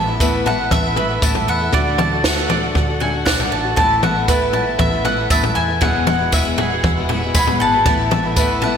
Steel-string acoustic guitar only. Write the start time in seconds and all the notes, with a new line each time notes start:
0.08 A3 B3 E4
0.21 A2 E3 A3 B3 E4
0.47 E3 A3 B3 E4
0.59 A3 B3 E4
0.84 A3 B3 E4
0.97 E3 A3 B3 E4
1.08 A3 B3 E4
1.22 A2 E3 A3 B3 E4
1.61 A3 B3 E4
1.74 D3 A3 D4 F#4
1.99 D3 A3 D4 F#4
2.13 A3 D4 F#4
2.24 D3 A3 D4 F#4
2.50 D3 A3 D4 F#4
2.63 A3 D4 F#4
2.88 A3 D4 F#4
3.01 D3 A3 D4 F#4
3.14 A3 D4 F#4
3.26 D3 A3 D4 F#4
3.64 A3 D4 F#4
3.77 A2 E3 A3 B3 E4
4.02 E3 A3 B3 E4
4.16 A3 B3 E4
4.28 A2 E3 A3 B3 E4
4.53 E3 A3 B3 E4
4.66 A3 B3 E4
4.91 A3 B3 E4
5.05 E3 A3 B3 E4
5.18 A3 B3 E4
5.31 A2 E3 A3 B3 E4
5.68 A3 B3 E4
5.83 E2 B2 F#3 G#3 B3 E4
6.07 G#3 B3 E4
6.19 F#3 G#3 B3 E4
6.32 E2 B2 F#3 G#3 B3 E4
6.59 F#3 G#3 B3 E4
6.71 F#3 G#3 B3 E4
6.97 F#3 G#3 B3 E4
7.10 F#3 G#3 B3 E4
7.23 F#3 G#3 B3 E4
7.36 E2 B2 F#3 G#3 B3 E4
7.73 F#3 G#3 B3 E4
7.87 A2 E3 A3 B3 E4
8.12 E3 A3 B3 E4
8.26 A3 B3 E4
8.39 A2 E3 A3 B3 E4
8.63 E3 A3 B3 E4